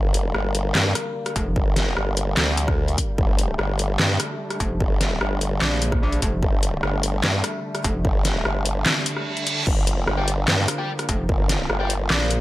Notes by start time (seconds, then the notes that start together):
Already playing: G1 D3 G3 A#3
0.14 closed hi-hat
0.34 G1, cross-stick
0.55 closed hi-hat
0.75 G2, snare, clap
0.95 cross-stick, closed hi-hat
1.26 cross-stick, closed hi-hat
1.36 F1, kick, closed hi-hat
1.56 G1, kick
1.76 snare, closed hi-hat
1.97 G1, cross-stick
2.17 closed hi-hat
2.37 D2, snare, clap
2.57 closed hi-hat
2.68 kick, cross-stick
2.88 closed hi-hat
2.98 kick, closed hi-hat
3.18 G1 A3, kick
3.39 closed hi-hat
3.59 G1, cross-stick
3.79 closed hi-hat
3.99 G2, snare, clap
4.20 cross-stick, closed hi-hat
4.50 cross-stick, closed hi-hat
4.60 F1, kick, closed hi-hat
4.80 G1, kick
5.01 snare, closed hi-hat
5.21 G1, cross-stick
5.41 closed hi-hat
5.61 A#1, snare, clap
5.82 closed hi-hat
5.92 kick, cross-stick
6.12 closed hi-hat
6.22 F1, kick, closed hi-hat
6.43 G1, kick
6.63 closed hi-hat
6.83 G1, cross-stick
7.03 closed hi-hat
7.24 G2, snare, clap
7.44 cross-stick, closed hi-hat
7.75 cross-stick, closed hi-hat
7.84 F1, kick, closed hi-hat
8.05 G1, kick
8.25 snare, closed hi-hat
8.45 G1, cross-stick
8.65 closed hi-hat
8.86 snare, clap, reverse cymbal
9.06 closed hi-hat
9.17 cross-stick
9.37 closed hi-hat
9.47 closed hi-hat
9.67 G1 F3 A#3, kick, crash
9.87 closed hi-hat
10.07 G1, cross-stick
10.18 G4 D5 G5
10.28 closed hi-hat
10.48 G2, snare, clap
10.68 cross-stick, closed hi-hat
10.79 G4 D5 G5
10.99 cross-stick, closed hi-hat
11.09 F1, kick, closed hi-hat
11.29 G1, kick
11.49 snare, closed hi-hat
11.70 G1, cross-stick
11.80 G4 D5 G5
11.90 closed hi-hat
12.10 A#1, snare, clap
12.31 closed hi-hat